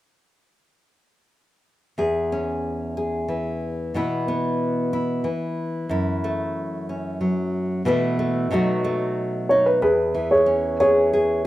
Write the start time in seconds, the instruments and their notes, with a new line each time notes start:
1.98 nylon-string guitar E2 G#4
2.32 nylon-string guitar C#4
2.97 nylon-string guitar G#4
3.28 nylon-string guitar E3
3.94 nylon-string guitar B2 E3 B3 E4
4.28 nylon-string guitar B3
4.93 nylon-string guitar E4
5.24 nylon-string guitar E3
5.89 nylon-string guitar F#2 E4
6.24 nylon-string guitar A3
6.89 nylon-string guitar C#4
7.21 nylon-string guitar F#3
7.85 nylon-string guitar B2 E3 A3 B3 E4
8.19 nylon-string guitar A3
8.51 nylon-string guitar B2 F#3 A3 D#4 F#4
8.84 nylon-string guitar A3
9.49 nylon-string guitar D#4, grand piano C#5
9.66 grand piano B4
9.82 nylon-string guitar E2, grand piano G#4 B4
10.15 nylon-string guitar E3
10.31 grand piano G#4 C#5
10.46 nylon-string guitar C#4
10.80 nylon-string guitar G#4, grand piano G#4 C#5
11.13 nylon-string guitar G#4